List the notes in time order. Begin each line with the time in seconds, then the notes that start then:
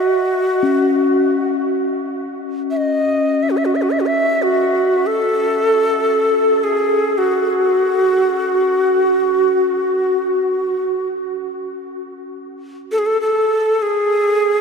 Already playing: F#4
0.63 C#4
2.71 E5
2.77 D#5
3.43 E5
3.50 F#4
3.57 E5
3.65 F#4
3.75 E5
3.82 F#4
3.91 E5
4.00 F#4
4.06 E5
4.43 F#4
5.07 A4
6.64 G#4
7.18 F#4
12.92 A4
12.98 G#4
13.06 A4
13.21 A4
13.82 G#4